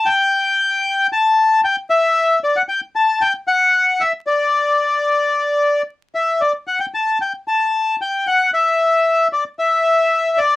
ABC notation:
X:1
M:4/4
L:1/16
Q:1/4=114
K:Ador
V:1 name="Bandoneon"
g8 a4 g2 e2- | e2 d f g2 a2 g2 f4 e2 | d12 z2 e2 | d2 f g a2 g2 a4 g2 f2 |
e6 d2 e6 d2 |]